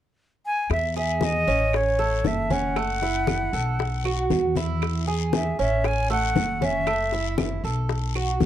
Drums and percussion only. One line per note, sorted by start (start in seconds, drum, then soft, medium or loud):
0.70 high bongo medium
0.70 high conga soft
0.70 long guiro medium
0.70 claves medium
0.96 high bongo soft
0.96 high conga soft
1.21 high bongo medium
1.21 high conga medium
1.21 short guiro medium
1.47 high conga soft
1.47 short guiro medium
1.73 high bongo medium
1.73 high conga soft
1.73 long guiro medium
1.73 claves medium
1.99 high bongo soft
1.99 high conga soft
2.24 high bongo soft
2.24 low bongo medium
2.24 high conga medium
2.24 short guiro medium
2.50 high bongo soft
2.50 high conga medium
2.50 short guiro medium
2.76 high bongo medium
2.76 high conga soft
2.76 long guiro medium
2.76 claves medium
3.02 high bongo soft
3.02 high conga soft
3.27 high bongo medium
3.27 high conga medium
3.27 short guiro medium
3.27 claves medium
3.53 high conga soft
3.53 short guiro medium
3.79 high bongo medium
3.79 high conga soft
3.79 long guiro medium
4.04 high bongo soft
4.04 high conga soft
4.04 claves medium
4.30 high bongo soft
4.30 low bongo medium
4.30 high conga medium
4.30 short guiro medium
4.55 high bongo soft
4.55 high conga medium
4.55 short guiro medium
4.81 high bongo medium
4.81 high conga soft
4.81 long guiro medium
4.81 claves medium
5.07 high bongo soft
5.07 high conga soft
5.33 high bongo medium
5.33 high conga medium
5.33 short guiro medium
5.59 high conga soft
5.59 short guiro medium
5.84 high bongo medium
5.84 high conga soft
5.84 long guiro medium
5.84 claves medium
6.10 high bongo soft
6.10 high conga soft
6.36 high bongo soft
6.36 low bongo medium
6.36 high conga medium
6.36 short guiro medium
6.61 high bongo soft
6.61 high conga medium
6.61 short guiro medium
6.87 high bongo medium
6.87 high conga soft
6.87 long guiro medium
6.87 claves medium
7.12 high bongo soft
7.12 high conga soft
7.38 high bongo medium
7.38 high conga loud
7.38 short guiro medium
7.38 claves medium
7.64 high conga soft
7.64 short guiro medium
7.89 high bongo medium
7.89 high conga soft
7.89 long guiro medium
8.15 high bongo soft
8.15 high conga soft
8.15 claves medium
8.40 high bongo soft
8.40 low bongo medium
8.40 high conga medium
8.40 short guiro medium